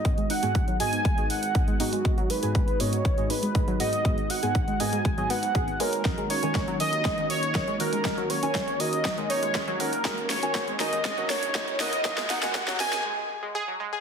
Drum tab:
HH |xxoxxxoxxxoxxxox|xxoxxxoxxxoxxxox|xxoxxxoxxxoxxxox|xxoxxxoxxxoxxxox|
SD |----------------|----------------|----------------|o---o---o---o---|
BD |o---o---o---o---|o---o---o---o---|o---o---o---o---|o---o---o---o---|

HH |xxoxxxoxxxoxxxox|xxoxxxoxxxoxxxox|xxoxxxox--------|
SD |o---o---o---o---|o-o-o-o-o-o-o-o-|oooooooo--------|
BD |o---o---o---o---|o---o---o---o---|o---o-----------|